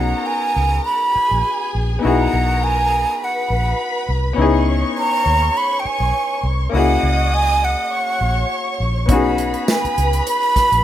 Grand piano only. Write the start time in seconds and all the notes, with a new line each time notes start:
Already playing: B3 C#4 D#4 F#4 G#4
1.99 B3 D#4
2.03 E4 F#4 G#4
4.33 B3 C#4
4.37 D#4 E4
4.42 G#4
6.69 A#3 C#4
6.73 E4 F#4 G#4
9.06 B3 C#4 D#4
9.11 F#4 G#4